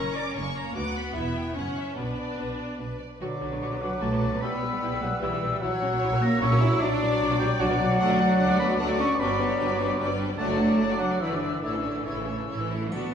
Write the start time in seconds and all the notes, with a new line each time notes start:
Already playing: F#1 F#2 C#4 A#4 A#5 C#6
0.15 D5 A#5 D6
0.35 F#1 F#2 A#3 C#4 C#5 C#6
0.57 A#5
0.75 D2 B3 F#4 F#5 D6
0.97 B5
1.15 E1 E2 E4 E5
1.37 G5
1.55 F#1 F#2 C#4 C#5 F#5
1.77 E5
1.95 B1 B2 B3 D4 B4
2.18 D5
2.37 B1 B2 B4
2.58 D5
2.79 B1 B2 B4
2.99 D5
3.19 B1 D3 F#3 F#4 B4 D5 D6
3.41 B1 F#3 D4
3.51 B1 F#3 B3
3.62 B1 F#3 F#4
3.71 B1 F#3 B3
3.82 B1 F#3 D4 F#5
4.01 B1 F#3 A3 F#4 A5
4.12 B1 F#3 B3
4.22 B1 F#3 D4
4.32 B1 F#3 B3
4.41 B1 G3 B3 E4 B4 B5 E6
4.62 B1 G3 B3
4.72 B1 G3
4.82 B1 G3 E4
4.92 B1 G3
5.02 B1 F#3 G3 B3 F#5
5.20 B1 E3 G3 E4 B4 E5 E6
5.32 B1 G3
5.41 B1 G3 B3
5.52 B1 G3
5.60 A#1 F#3 E4 C#5 F#5 E6
5.81 A#1 F#3 C#4
5.92 A#1 F#3 A#3
6.01 A#1 F#3 E4
6.11 A#1 F#3 A#3
6.21 A#1 F#3 A#3 C#4 A#5
6.41 A#1 F#3 C#4 E4 C#5 C#6 E6
6.51 A#1 F#3 A#3
6.61 A#1 F#3 C#4 E4 E6
6.71 A#1 F#3 A#3
6.80 B1 F#3 D4 D5 D6
7.01 B1 F#3 B3
7.11 B1 F#3 B3
7.20 B1 F#3 D4
7.30 B1 F#3 B3
7.39 B1 F#3 G3 B3 G5
7.59 B1 F#3 D4 D5 F#5 D6
7.69 B1 F#3 B3
7.79 B1 F#3 B3 F#5
7.89 B1 F#3 B3
7.98 D2 F#3 A3 D4 D5 F#5 D6
8.10 F#3 F#4 D5
8.18 A3 D4 F#5
8.27 F#3 F#4 D5
8.38 D2 A3 D4 F#5
8.48 F#3 F#4 D5
8.58 A3 B3 D4 F#5 B5
8.67 F#3 F#4 D5
8.77 D2 F#3 A3 D4 D5 F#5 A5 D6
8.87 F#3 F#4 D5
8.98 A3 C#4 D4 F#5 C#6
9.08 F#3 F#4 D5
9.18 G1 F#3 G3 B3 D4 B4 D5 B5 D6
9.28 F#3 B3 D5
9.38 G3 D4 B4
9.48 F#3 B3 D5
9.58 G1 G3 D4 B4
9.68 F#3 B3 D5
9.78 G3 D4 B4
9.87 F#3 B3 D5
9.97 G1 G3 D4 B4
10.07 F#3 B3 D5
10.17 G3 D4 B4
10.27 F#3 B3 D5
10.38 F#1 F#3 A3 D4 D5 F#5 A5 D6
10.47 F#3 F#4 D5
10.57 A3 D4 F#5
10.68 F#3 F#4 D5
10.79 F#1 A3 D4 C#5 F#5
10.89 F#3 F#4 D5
10.99 F#3 A3 D4 F#5
11.10 F#3 F#4 D5
11.20 G1 D3 E3 E4 B4 D5 E5 E6
11.30 D3 E3 D4 B4 D5
11.41 D3 E4 D5
11.52 E3 D4 B4
11.62 A1 D3 E3 A3 E4 A4 C#5 D5 E6
11.73 E3 C#4 A4
11.84 A3 E4 C#5
11.95 E3 C#4 A4
12.05 A1 C#3 E3 A3 E4 A4 C#5 E6
12.16 E3 C#4 A4
12.28 A3 E4 C#5
12.37 E3 C#4 A4
12.48 A1 E3 A3 E4 C#5
12.59 E3 C#4 A4
12.71 A3 E4 C#5
12.80 E3 C#4 A4
12.91 D2 B3 D4 F#4 A4 D5, triangle